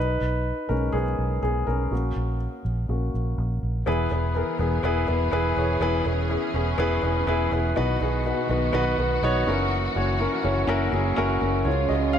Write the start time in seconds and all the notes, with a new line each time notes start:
Already playing: B1 D#4 B4
0.21 B1
0.69 B1 G#3 C#4 D#4 A#4
0.92 B1 B3 G#4
1.19 B1
1.43 B1 B3 G#4
1.67 B1 C#4 A#4
1.91 A#1 A#3 C#4 F#4
2.16 A#1
2.65 A#1
2.89 A#1 A#3 C#4 F#4
3.14 A#1
3.38 A#1
3.63 A#1
3.86 E1 E3 B3 E4 G#4 B4
4.11 E1 B3 E4 G#4 B4
4.35 B3 E4 G#4 A#4
4.59 E1 B3 E4 G#4 B4
4.83 E1 B3 E4 G#4 B4
5.07 E1 B3 E4 G#4 B4
5.31 E1 B3 E4 G#4 B4
5.56 E1 B3 E4 G#4 C#5
5.81 E1 E3 B3 C#4 E4 G#4 B4
6.05 E1 B3 E4 G#4 B4
6.29 B3 E4 G#4 B4
6.54 E1 B3 E4 G#4 B4
6.78 E1 B3 E4 G#4 B4
7.02 E1 B3 E4 G#4 B4
7.27 E1 B3 E4 G#4 B4
7.51 E1 B3 E4 G#4 B4
7.76 B1 B2 D#3 B3 D#4 F#4 B4
8.00 B1 B3 D#4 F#4 G#4
8.26 B3 D#4 F#4 B4
8.49 B1 B3 D#4 F#4 B4
8.73 B1 B3 D#4 F#4 B4
8.98 B1 B3 D#4 F#4 B4
9.22 B1 B3 D#4 F#4 C#5
9.47 F#1 E3 A#3 C#4 E4 F#4 A#4
9.95 F#1 C#4 E4 F#4 C#5
10.20 C#4 E4 F#4 A#4
10.44 F#1 C#4 E4 F#4 C#5
10.67 F#1 C#4 E4 F#4 A#4
10.92 F#1 C#4 E4 F#4 G#4
11.16 F#1 C#4 E4 F#4 A#4
11.41 F#1 C#4 E4 F#4 A#4
11.65 C#2 C#3 F3 G#3 C#4 F4 C#5
11.89 C#2 F#4 D#5
12.13 G#4 F5